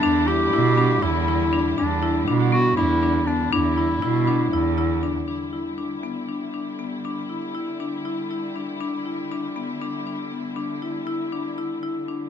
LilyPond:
<<
  \new Staff \with { instrumentName = "Clarinet" } { \time 7/8 \key e \minor \tempo 4 = 119 d'8 g'4. e'4. | d'4 r8 fis'8 e'4 d'8 | e'2. r8 | r2. r8 |
r2. r8 | r2. r8 | r2. r8 | }
  \new Staff \with { instrumentName = "Marimba" } { \time 7/8 \key e \minor d'8 e'8 e'8 d'8 e'8 e'8 d'8 | d'8 e'8 d'8 b8 d'8 d'8 b8 | d'8 e'8 e'8 d'8 e'8 e'8 d'8 | d'8 e'8 d'8 b8 d'8 d'8 b8 |
d'8 e'8 e'8 d'8 e'8 e'8 d'8 | d'8 e'8 d'8 b8 d'8 d'8 b8 | d'8 e'8 e'8 d'8 e'8 e'8 d'8 | }
  \new Staff \with { instrumentName = "String section" } { \clef bass \time 7/8 \key e \minor <d g e'>2.~ <d g e'>8~ | <d g e'>2.~ <d g e'>8~ | <d g e'>2.~ <d g e'>8 | <d g e'>2.~ <d g e'>8~ |
<d g e'>2.~ <d g e'>8~ | <d g e'>2.~ <d g e'>8~ | <d g e'>2.~ <d g e'>8 | }
  \new Staff \with { instrumentName = "Cello" } { \clef bass \time 7/8 \key e \minor e,4 b,4 e,4. | e,4 b,4 e,4. | e,4 b,4 e,4. | r2. r8 |
r2. r8 | r2. r8 | r2. r8 | }
>>